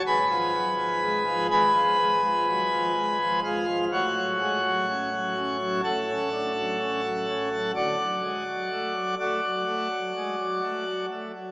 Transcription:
<<
  \new Staff \with { instrumentName = "Pipe organ" } { \time 4/4 \key fis \minor \tempo 4 = 62 <b' gis'' b''>4. <b' gis'' b''>2 <eis' eis''>8 | <fis' cis'' fis''>2 <a' fis'' a''>2 | <fis' d'' fis''>4. <fis' d'' fis''>2 r8 | }
  \new Staff \with { instrumentName = "Pipe organ" } { \clef bass \time 4/4 \key fis \minor << { gis,16 eis16 fis16 eis16 gis16 eis16 gis16 eis16 gis16 eis16 fis16 eis16 gis16 eis16 gis16 eis16 | a,16 fis16 gis16 fis16 cis'16 fis16 cis'16 fis16 a,16 cis'16 d'16 fis16 cis'16 fis16 cis'16 fis16 | d16 fis16 gis16 fis16 a16 fis16 a16 fis16 a16 fis16 gis16 fis16 a16 fis16 a16 fis16 | } \\ { gis,,1 | a,,2 a,,2 | d,16 r2. r8. | } >> }
>>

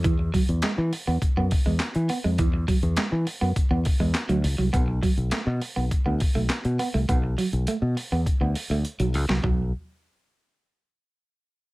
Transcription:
<<
  \new Staff \with { instrumentName = "Clean electric guitar" } { \time 4/4 \key b \dorian \tempo 4 = 102 e16 r16 fis16 r16 gis16 r8 b16 r16 b16 r16 gis16 r8 b16 gis16 | e16 r16 fis16 r16 gis16 r8 b16 r16 b16 r16 gis16 r16 fis16 r16 fis16 | b16 r16 fis16 r16 a16 r8 b16 r16 b16 r16 a16 r8 b16 a16 | b16 r16 fis16 r16 a16 r8 b16 r16 b16 r16 a16 r16 fis16 r16 fis16 |
fis8 r2. r8 | }
  \new Staff \with { instrumentName = "Fingered electric bass" } { \clef bass \time 4/4 \key b \dorian e,8 r16 e,16 r16 e16 r16 e,16 r16 fis,16 r16 e,16 r16 e16 r16 eis,16 | e,8 r16 e,16 r16 e16 r16 fis,16 r16 e,16 r16 e,16 r16 d,16 cis,16 c,16 | b,,8 r16 b,,16 r16 b,16 r16 b,,16 r16 d,16 r16 b,,16 r16 b,16 r16 c,16 | b,,8 r16 b,,16 r16 b,16 r16 e,16 r16 d,16 r16 d,16 r16 b,,16 cis,16 c,16 |
b,,8 r2. r8 | }
  \new DrumStaff \with { instrumentName = "Drums" } \drummode { \time 4/4 <hh bd>8 <hho bd>16 hh16 <hc hh sn>8 hho8 <hh bd>8 <hho bd>8 <hc hh sn>16 hh16 hho8 | <hh bd>8 <hho bd>16 hh16 <hc hh sn>8 hho8 <hh bd>8 <hho bd>8 <hc hh sn>16 hh16 hho8 | <hh bd>8 <hho bd>16 hh16 <hc hh sn>8 hho8 <hh bd>8 <hho bd>8 <hc hh sn>16 hh16 hho8 | <hh bd>8 hho16 hh16 hh8 hho8 <hh bd>8 hho8 hh16 hh16 hho16 sn16 |
<bd tomfh>4 r4 r4 r4 | }
>>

